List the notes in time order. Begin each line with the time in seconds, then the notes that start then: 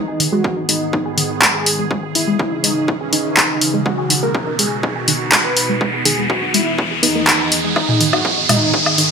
Already playing: G#2 D#3 B3 D#4 G#4, riser
0.08 G#4
0.20 D#3, open hi-hat
0.32 G#3 F#4
0.44 kick
0.57 D#4
0.69 G#3 D#4, open hi-hat
0.93 D#4, kick
1.06 G#4
1.18 D#3, open hi-hat
1.42 G#3, kick, clap
1.55 G#4
1.66 open hi-hat
1.79 G#3
1.91 C#3 E3 G#3 C#4, kick
2.03 G#4
2.15 D#3 E4, open hi-hat
2.28 G#3
2.39 E4, kick
2.52 D#4
2.64 G#3 D#4, open hi-hat
2.88 E4, kick
3.01 G#4
3.13 D#3 D#4, open hi-hat
3.37 G#3, kick, clap, open hi-hat
3.61 open hi-hat
3.74 G#3
3.86 B2 G#3 B3 D#4 F#4, kick
3.98 G#4
4.10 D#3, open hi-hat
4.23 G#3 A#4
4.35 kick
4.47 D#4
4.59 G#3 G#4, open hi-hat
4.83 D#4, kick
4.96 G#4
5.08 D#3, open hi-hat
5.32 G#3, kick, clap
5.45 B4
5.57 open hi-hat
5.69 G#3
5.81 E2 E3 G#3 G#4, kick
5.93 G#4
6.05 D#3 G#4, open hi-hat
6.18 G#3
6.30 F#4, kick
6.42 D#4
6.54 G#3 E4, open hi-hat
6.78 E4, kick
6.91 G#4
7.03 B3 D#4, open hi-hat
7.15 A#3
7.27 D#3, kick, clap, open hi-hat
7.52 D#4, open hi-hat
7.64 G#3
7.76 G#2 D#3 G#3 D#4, kick, low woodblock
7.89 G#4, mid tom
8.00 D#3, open hi-hat
8.13 D#4 F#4, low woodblock
8.25 kick
8.37 D#4
8.49 G#3 D#4, mid tom, open hi-hat, low woodblock
8.74 D#4, kick
8.86 G#4, low woodblock
8.98 D#3, open hi-hat